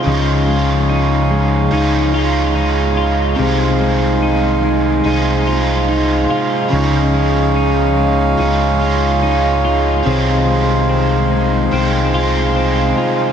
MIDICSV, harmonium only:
0, 0, Header, 1, 2, 480
1, 0, Start_track
1, 0, Key_signature, -5, "major"
1, 0, Tempo, 833333
1, 32, Time_signature, 4, 2, 24, 8
1, 7675, End_track
2, 0, Start_track
2, 0, Title_t, "Harmonium"
2, 0, Program_c, 0, 20
2, 0, Note_on_c, 0, 63, 82
2, 0, Note_on_c, 0, 68, 70
2, 0, Note_on_c, 0, 77, 83
2, 26, Note_on_c, 0, 73, 69
2, 1929, Note_off_c, 0, 68, 0
2, 1930, Note_off_c, 0, 73, 0
2, 1948, Note_on_c, 0, 68, 74
2, 1951, Note_on_c, 0, 72, 75
2, 3850, Note_off_c, 0, 63, 0
2, 3850, Note_off_c, 0, 77, 0
2, 3852, Note_off_c, 0, 72, 0
2, 3869, Note_on_c, 0, 63, 78
2, 3869, Note_on_c, 0, 77, 90
2, 3871, Note_on_c, 0, 73, 76
2, 5771, Note_off_c, 0, 63, 0
2, 5772, Note_off_c, 0, 73, 0
2, 5788, Note_on_c, 0, 63, 77
2, 5789, Note_on_c, 0, 72, 71
2, 7675, Note_off_c, 0, 63, 0
2, 7675, Note_off_c, 0, 68, 0
2, 7675, Note_off_c, 0, 72, 0
2, 7675, Note_off_c, 0, 77, 0
2, 7675, End_track
0, 0, End_of_file